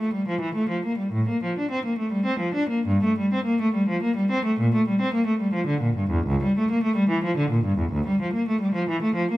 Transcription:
0.00 0.14 A3 medium
0.14 0.28 G3 soft
0.28 0.42 F3 soft
0.41 0.56 E3 soft
0.55 0.70 A3 medium
0.69 0.84 F3 soft
0.85 0.99 A#3 medium
0.98 1.12 G3 soft
1.12 1.27 A2 medium
1.29 1.42 A#3 soft
1.43 1.56 F3 soft
1.59 1.71 D4 soft
1.71 1.84 C4 medium
1.85 1.98 A#3 soft
1.99 2.12 A3 soft
2.12 2.26 G3 medium
2.26 2.40 C4 medium
2.40 2.55 F3 medium
2.55 2.70 D4 medium
2.70 2.85 A#3 medium
2.87 3.01 G2 medium
3.04 3.17 A3 medium
3.18 3.32 G3 medium
3.34 3.46 C4 medium
3.45 3.59 A#3 medium
3.61 3.74 A3 medium
3.74 3.88 G3 medium
3.89 4.02 F3 medium
4.03 4.16 A#3 medium
4.16 4.30 G3 medium
4.31 4.44 C4 medium
4.45 4.58 A3 medium
4.60 4.72 A#2 medium
4.75 4.87 A3 medium
4.88 5.00 G3 medium
5.01 5.13 C4 medium
5.14 5.26 A#3 medium
5.27 5.39 A3 medium
5.40 5.53 G3 medium
5.54 5.67 F3 medium
5.67 5.81 D3 medium
5.81 5.95 A#2 medium
5.96 6.10 G2 medium
6.11 6.25 E2 medium
6.27 6.40 C#2 medium
6.43 6.56 G3 medium
6.58 6.70 A3 medium
6.71 6.83 A#3 medium
6.83 6.96 A3 medium
6.96 7.09 G3 medium
7.10 7.23 E3 medium
7.24 7.37 F3 medium
7.37 7.51 D3 medium
7.51 7.64 A#2 medium
7.65 7.78 G2 medium
7.78 7.92 E2 medium
7.92 8.06 D2 medium
8.07 8.20 G3 medium
8.21 8.34 F3 medium
8.34 8.47 A#3 medium
8.48 8.61 A3 medium
8.61 8.75 G3 medium
8.74 8.88 F3 medium
8.89 9.03 E3 medium
9.02 9.16 A3 medium
9.15 9.30 F3 medium
9.31 9.37 A#3 medium

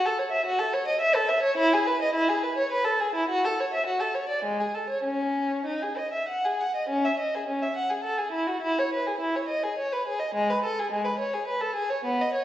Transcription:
0.06 0.20 A4 medium
0.19 0.33 C#5 medium
0.32 0.46 E5 medium
0.46 0.60 F#4 medium
0.59 0.74 A4 medium
0.74 0.88 C#5 medium
0.88 1.02 D#5 medium
1.01 1.16 E5 medium
1.15 1.30 A4 medium
1.29 1.44 E5 medium
1.43 1.58 C#5 medium
1.58 1.72 E4 medium
1.73 1.87 G#4 medium
1.87 2.01 B4 medium
2.02 2.16 D#5 medium
2.15 2.29 E4 medium
2.29 2.43 G#4 medium
2.43 2.58 B4 medium
2.57 2.71 C#5 medium
2.72 2.86 B4 medium
2.85 3.00 A4 medium
3.01 3.15 G#4 medium
3.16 3.30 E4 medium
3.29 3.44 F#4 medium
3.45 3.59 A4 medium
3.60 3.74 C#5 medium
3.74 3.88 E5 medium
3.87 4.01 F#4 medium
4.00 4.15 A4 medium
4.15 4.30 C#5 medium
4.29 4.44 D5 medium
4.45 4.59 G#3 medium
4.60 4.75 G#4 medium
4.75 4.90 A4 medium
4.90 5.05 C#5 medium
5.04 5.66 C#4 medium
5.66 5.82 D#4 medium
5.83 5.99 G#4 soft
5.98 6.14 D#5 soft
6.13 6.29 E5 medium
6.29 6.44 F#5 medium
6.45 6.61 G#4 soft
6.61 6.76 F#5 medium
6.76 6.91 D#5 medium
6.90 7.04 C#4 medium
7.06 7.20 E5 medium
7.20 7.34 D#5 medium
7.35 7.49 G#4 medium
7.48 7.62 C#4 medium
7.63 7.77 E5 medium
7.76 7.90 F#5 medium
7.90 8.04 G#4 medium
8.04 8.18 A4 medium
8.18 8.33 G#4 medium
8.32 8.47 E4 medium
8.47 8.63 F#4 medium
8.62 8.77 E4 medium
8.79 8.93 C#5 medium
8.94 9.07 B4 medium
9.07 9.22 G#4 medium
9.21 9.35 E4 medium
9.36 9.50 C#5 medium
9.48 9.63 D#5 medium
9.63 9.78 G#4 medium
9.78 9.92 C#5 medium
9.93 10.07 B4 medium
10.08 10.21 G#4 medium
10.20 10.34 D#5 medium
10.35 10.49 G#3 medium
10.50 10.64 B4 medium
10.64 10.78 A4 medium
10.80 10.93 G#4 medium
10.92 11.06 G#3 medium
11.05 11.19 B4 medium
11.19 11.33 C#5 medium
11.34 11.47 G#4 medium
11.48 11.61 B4 medium
11.61 11.75 A4 medium
11.76 11.90 G#4 medium
11.90 12.05 C#5 medium
12.05 12.19 B3 medium
12.21 12.35 D#5 medium
12.34 12.44 C#5 medium

